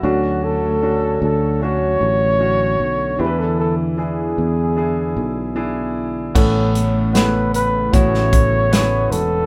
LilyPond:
<<
  \new Staff \with { instrumentName = "Flugelhorn" } { \time 4/4 \key a \major \tempo 4 = 76 fis'8 a'4 a'8 cis''2 | b'16 a'16 a'8 gis'2 r4 | r4 b'8 b'8 cis''4. a'8 | }
  \new Staff \with { instrumentName = "Grand piano" } { \time 4/4 \key a \major <cis' d' fis'>4 <cis' d' fis'>4 <cis' d' fis'>4 <cis' d' fis'>4 | <d' e' g' b'>4 <d' e' gis'>4 <d' e' gis'>4 <d' e' gis'>4 | <b cis' a'>4 <b cis' a'>4 <b cis' fis'>4 <b cis' b'>4 | }
  \new Staff \with { instrumentName = "Grand piano" } { \clef bass \time 4/4 \key a \major d4. r2 r8 | e4. r2 r8 | a,4. r2 r8 | }
  \new Staff \with { instrumentName = "Nylon-string guitar" } { \time 4/4 \key a \major r1 | r1 | a,8 cis'8 b4 <b cis' e'>4 <b cis' e'>4 | }
  \new Staff \with { instrumentName = "Analog synth pad" } { \time 4/4 \key a \major << { <fis a fis' cis''>1 | <e b e'>1 | <e a b e'>1 | } \\ { d1~ | d1 | cis1 | } >> }
  \new Staff \with { instrumentName = "Fretless electric bass" } { \clef bass \time 4/4 \key a \major d,4. d,4 a,,4 b,,8 | e,4. e,4 b,,4. | a,,2 a,,4. e,,8 | }
  \new DrumStaff \with { instrumentName = "Drums" } \drummode { \time 4/4 r4 r4 r4 r4 | r4 r4 r4 r4 | <cymc bd>8 hh8 <hh sn>8 hh8 <hh bd>16 sn16 <hh bd>8 <hh sn>8 hh8 | }
>>